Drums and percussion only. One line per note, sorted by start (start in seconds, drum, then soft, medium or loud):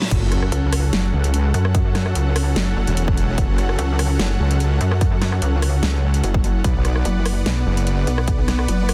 0.02 snare medium
0.11 kick loud
0.11 closed hi-hat medium
0.11 crash loud
0.32 cross-stick medium
0.32 closed hi-hat medium
0.42 cross-stick medium
0.52 closed hi-hat medium
0.73 cross-stick medium
0.73 open hi-hat loud
0.93 snare loud
0.93 closed hi-hat medium
1.24 closed hi-hat medium
1.34 closed hi-hat medium
1.54 closed hi-hat medium
1.65 cross-stick medium
1.75 kick loud
1.75 closed hi-hat medium
1.95 cross-stick medium
1.95 snare medium
1.95 closed hi-hat medium
2.06 cross-stick medium
2.15 closed hi-hat medium
2.36 cross-stick medium
2.36 open hi-hat medium
2.56 snare loud
2.56 closed hi-hat medium
2.87 closed hi-hat medium
2.97 closed hi-hat medium
3.08 kick loud
3.17 closed hi-hat medium
3.38 kick loud
3.38 closed hi-hat medium
3.58 cross-stick soft
3.58 closed hi-hat medium
3.69 cross-stick medium
3.79 closed hi-hat medium
3.99 cross-stick medium
3.99 open hi-hat medium
4.19 snare loud
4.19 closed hi-hat medium
4.51 closed hi-hat medium
4.60 closed hi-hat medium
4.81 closed hi-hat medium
4.92 cross-stick medium
5.01 kick loud
5.01 closed hi-hat medium
5.22 cross-stick medium
5.22 snare medium
5.22 closed hi-hat medium
5.32 cross-stick medium
5.42 closed hi-hat medium
5.62 cross-stick medium
5.62 open hi-hat medium
5.83 snare loud
5.83 closed hi-hat medium
6.14 closed hi-hat medium
6.24 closed hi-hat medium
6.34 kick loud
6.44 closed hi-hat medium
6.64 kick loud
6.64 closed hi-hat medium
6.85 cross-stick medium
6.85 closed hi-hat medium
6.96 cross-stick medium
7.05 closed hi-hat medium
7.26 cross-stick medium
7.26 open hi-hat medium
7.46 snare loud
7.46 closed hi-hat medium
7.77 closed hi-hat medium
7.87 closed hi-hat medium
8.07 closed hi-hat medium
8.18 cross-stick medium
8.28 kick loud
8.28 closed hi-hat medium
8.48 cross-stick medium
8.48 snare medium
8.48 closed hi-hat soft
8.59 cross-stick medium
8.68 closed hi-hat medium
8.89 cross-stick medium
8.89 open hi-hat medium